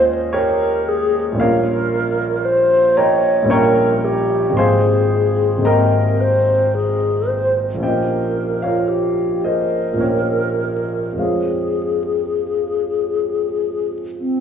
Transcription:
Already playing: grand piano D#2 G#3 A#3 C#4 F4 G#4 A#4 C5 C#5 D#5 F5
0.33 grand piano G4 A#4 C#5, alto flute A#4
0.88 alto flute G#4
1.32 grand piano A#1 G3 A#3
1.37 grand piano C#4 C#5 F5, alto flute A#4
1.41 grand piano F4 A#4
2.45 alto flute C5
2.97 grand piano A#4 D#5 G5 A#5, alto flute C#5
3.43 grand piano A#1 G3 A#3
3.48 grand piano C#4 F4 C#5 G5 A#5 C#6, alto flute A#4
4.05 alto flute G4
4.50 grand piano G#1 G#3 A#3
4.55 grand piano C4 G4 C5 F5 G#5 C6, alto flute G#4
5.58 grand piano G#1 G#3 A#3
5.63 grand piano C4 G4 A#4 D#5 G5 A#5
5.67 alto flute A#4
6.21 alto flute C5
6.75 alto flute G#4
7.28 alto flute C5
7.74 grand piano A#1 F3 A#3
7.80 grand piano C#4 F4 G4 C5 D#5 G5, alto flute A#4
8.62 grand piano F4 A#4 C#5 F5
8.88 alto flute G4
9.44 grand piano G#4 C5 D#5, alto flute A#4
9.93 grand piano A#1 F3 A#3
9.98 grand piano C#4 F4 G4 C#5
10.02 grand piano A#4
11.12 grand piano F2 F3 G#3
11.17 grand piano C4 F4 G4 C#5 F5, alto flute G#4
11.21 grand piano A#4
14.19 alto flute C4

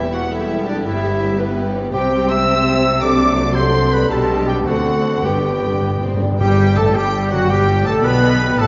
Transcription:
Already playing: double bass section E1, cello section E2, harp E2 E4 G4 B4 G5, viola section G3 B3, violin section E4 G4 E5, french horn section B4, flute section E5
0.14 clarinet F#4, harp B4, violin section F#5, flute section F#5
0.32 clarinet E4, french horn section A4, violin section E5, flute section E5, harp G5
0.51 harp E5
0.68 clarinet D4, harp G4, flute section D5, violin section D5
0.85 double bass section G1, cello section G2, harp G2, clarinet E4, french horn section G4, violin section E5, flute section E5
1.04 harp E4
1.22 harp B4
1.39 clarinet B3, violin section B4, french horn section B4, flute section B4, harp G5
1.57 harp E5
1.75 harp G4
1.93 double bass section C2, cello section C3, harp C3, viola section G3 C4, violin section G4 G5, clarinet G4, french horn section C5, flute section G5
2.11 harp C4
2.30 harp C5, clarinet E5, violin section E6, flute section E6
2.48 harp G5
2.66 harp C5
2.84 harp G4
3.01 harp C3, viola section F#3 A3, violin section D4 A4 D6, french horn section A4, clarinet D5, flute section D6
3.20 harp D4, french horn section G4
3.37 french horn section F#4, harp A4
3.55 french horn section A4, clarinet C5, harp F#5, violin section C6, flute section C6
3.74 harp D5
3.92 harp F#4, clarinet B4, flute section B5, violin section B5
4.10 double bass section B1, cello section B2, harp B2, viola section G3 B3, french horn section G4, violin section G4 A5, clarinet A4, flute section A5
4.29 harp D4
4.47 clarinet G4, harp G4 B4, flute section G5, violin section G5
4.65 cello section D2, double bass section D2, viola section D3 C4, harp D3, clarinet F#4, french horn section A4, violin section A4 F#5, flute section F#5
4.86 harp D4
5.04 harp A4 C5
5.23 double bass section G1, cello section G2, harp G2, timpani G2, viola section B3, violin section D4 G4 G5, clarinet G4, french horn section B4, flute section G5
5.33 timpani G2
5.41 timpani G2, harp D4
5.50 timpani G2
5.57 timpani G2
5.63 timpani G2, harp B4
5.74 timpani G2
5.82 timpani G2, violin section B3, harp G5
5.90 timpani G2
5.98 timpani G2, violin section C4
6.02 timpani G2, harp D5
6.14 timpani G2
6.21 timpani G2, violin section D4, harp G4
6.30 timpani G2
6.39 double bass section G1, cello section G2, harp G2, timpani G2, french horn section G3, viola section G3, oboe G4, trumpet section G4, clarinet G4, violin section G5
6.49 harp D3
6.59 harp D4
6.76 double bass section A1, cello section A2, viola section A3, french horn section A3, oboe A4, clarinet A4, trumpet section A4, harp B4, violin section A5
6.86 harp D5
6.94 double bass section G1, cello section G2, viola section G3, french horn section G3, trumpet section G4, oboe G4, clarinet G4, violin section G5, harp G5
7.04 harp B5
7.14 harp G5
7.23 harp D5
7.30 double bass section F#1, cello section F#2, french horn section F#3, viola section F#3, oboe F#4, trumpet section F#4, clarinet F#4, harp G4, violin section F#5
7.41 harp D4
7.49 double bass section G1, cello section G2, harp B2, viola section G3, french horn section G3, oboe G4, trumpet section G4, clarinet G4, violin section G5
7.59 harp B3
7.69 harp D4
7.85 double bass section A1, cello section A2, french horn section A3, viola section A3, trumpet section A4, oboe A4, clarinet A4, harp B4, violin section A5
7.96 harp D5
8.03 double bass section B1, cello section B2, french horn section B3, viola section B3, oboe B4, clarinet B4, trumpet section B4, harp G5, violin section B5
8.14 harp B5
8.23 harp G5
8.32 harp D5
8.41 harp G4
8.50 harp D4
8.58 double bass section A1, cello section A2, harp A2, french horn section A3, oboe A4, clarinet A4, trumpet section A4, violin section A5

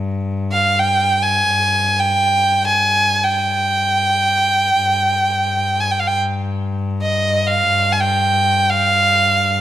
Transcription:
Already playing: cello G2
0.53 violin F5
0.79 violin G5
1.23 violin G#5
1.99 violin G5
2.67 violin G#5
3.24 violin G5
4.75 cello G2
5.80 violin G#5
5.91 violin G5
6.00 violin F5
6.08 violin G5
7.03 violin D#5
7.47 violin F5
7.93 violin G#5
8.01 violin G5
8.70 violin F5

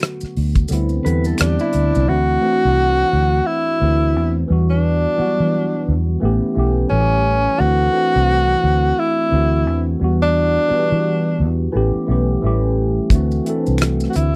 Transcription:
Already playing: tine electric piano D3 F#3 A3 B3 F#4
0.02 cross-stick, closed hi-hat
0.21 muted fingered electric bass stroke, cross-stick, maracas
0.37 fingered electric bass D2, open hi-hat
0.55 kick, closed hi-hat, maracas
0.68 fingered electric bass D2, tine electric piano D3 G3 B3 C4, closed hi-hat, maracas
0.73 tine electric piano E4
0.89 maracas
1.04 fingered electric bass E2, tine electric piano D3 G3 B3 C4, clean electric guitar B4, closed hi-hat
1.08 tine electric piano E4
1.24 clean electric guitar A4, closed hi-hat, maracas
1.38 fingered electric bass E2, tenor saxophone D4, clean electric guitar G4, finger snap, cross-stick, closed hi-hat, maracas
1.59 clean electric guitar E4, maracas
1.73 fingered electric bass D2, closed hi-hat
1.95 fingered electric bass C2, maracas
2.07 fingered electric bass D2, tine electric piano E3 A3 C4 D4, tenor saxophone F#4
2.12 tine electric piano F#4
2.41 tine electric piano E3 A3 C4 D4
2.46 tine electric piano E4
2.53 tine electric piano F#4
2.65 fingered electric bass C2
3.13 fingered electric bass D2
3.46 tenor saxophone E4
3.80 fingered electric bass D2, tine electric piano E3 A3 C4 D4
3.85 tine electric piano E4
4.16 fingered electric bass E2
4.48 fingered electric bass E2, tine electric piano E3 G3 B3 D4
4.52 tine electric piano F#4
4.70 tenor saxophone D4
5.16 tine electric piano E3 F#3 B3 D4, muted fingered electric bass stroke
5.21 tine electric piano G3 F#4
5.40 fingered electric bass E3
5.88 fingered electric bass E2
6.20 fingered electric bass A1, tine electric piano E3 A3 B3 C#4
6.25 tine electric piano G4
6.44 muted fingered electric bass stroke
6.55 fingered electric bass B1, tine electric piano E3 A3 B3 C#4
6.59 tine electric piano G4
6.89 fingered electric bass A1, tine electric piano E3 G3 A3 C#4, tenor saxophone C#4
6.94 tine electric piano F#4
7.00 tine electric piano G4
7.58 fingered electric bass D2, tine electric piano E3 A3 C4 D4, tenor saxophone F#4
7.63 tine electric piano F#4
7.93 tine electric piano E3 A3 C4 D4
7.97 tine electric piano E4
8.16 fingered electric bass C2
8.64 fingered electric bass D2
8.99 tenor saxophone E4
9.31 fingered electric bass D2, tine electric piano E3 A3 C4 D4
9.35 tine electric piano F#4
9.67 fingered electric bass E2
9.99 fingered electric bass E2, tine electric piano E3 G3 B3 D4
10.04 tine electric piano F#4
10.22 tenor saxophone D4
10.68 tine electric piano E3 G3 B3 D4, muted fingered electric bass stroke
10.73 tine electric piano F#4
10.79 tine electric piano G4
10.92 fingered electric bass E3
11.40 fingered electric bass E2
11.72 fingered electric bass A1, tine electric piano E3 A3 B3 C#4
11.77 tine electric piano G4
11.96 muted fingered electric bass stroke
12.07 fingered electric bass B1, tine electric piano E3 A3 B3 C#4
12.11 tine electric piano G4
12.42 fingered electric bass A1, tine electric piano E3 G3 A3 C#4
12.47 tine electric piano G4
13.10 fingered electric bass D2, tine electric piano E3 A3 C4 D4, kick, closed hi-hat, maracas
13.15 tine electric piano F#4
13.31 maracas
13.45 tine electric piano E3 A3 C4 D4, closed hi-hat
13.50 tine electric piano A4
13.67 fingered electric bass C2, maracas
13.78 finger snap, cross-stick, closed hi-hat, maracas
14.00 cross-stick, maracas
14.10 tenor saxophone F#4, maracas
14.15 fingered electric bass D2, tenor saxophone E4, closed hi-hat

